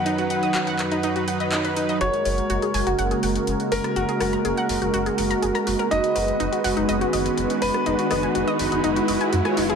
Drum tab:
HH |xxxxxxxxxxxxxxxx|xxoxxxoxxxoxxxox|xxoxxxoxxxoxxxox|xxoxxxoxxxoxxxox|
CP |----x-x-----x---|----------------|----------------|----------------|
SD |----------------|---------------r|--r----------r--|---------------r|

HH |xxoxxxoxxxoxxxox|
CP |----------------|
SD |--r----------r--|